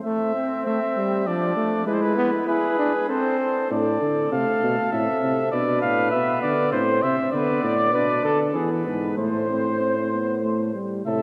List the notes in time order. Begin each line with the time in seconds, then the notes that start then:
0.04 A3 C4 E5
0.35 C4
0.66 A3 E5
0.97 G3
1.27 F3 D4 D5
1.56 A3
1.86 G#3 E4 B4
1.94 C5
2.02 B4
2.17 B3
2.47 E4 G#4 B4
2.79 D4
3.09 C4 A4 C5
3.40 A4
3.70 A2 D4 A4 D5
4.01 D3
4.32 C3 A3 F5
4.63 B2
4.92 A2 C4 E5
5.23 C3
5.52 B2 D4 B4 D5
5.82 A2 F5
6.11 B2 B3 E5
6.42 D3 D5
6.72 A2 C4 C5
7.02 C3 E5
7.32 D3 B3 B4 D5
7.63 A2 D5
7.93 B2 D4 B4
8.24 D3 A4
8.54 E3 B3 G#4 B4
8.86 G#2 B4
9.17 A2 A3 C5
9.49 C4
9.81 C4
10.12 B3
10.43 A3
10.74 G3
11.05 A2 C3 A4 E5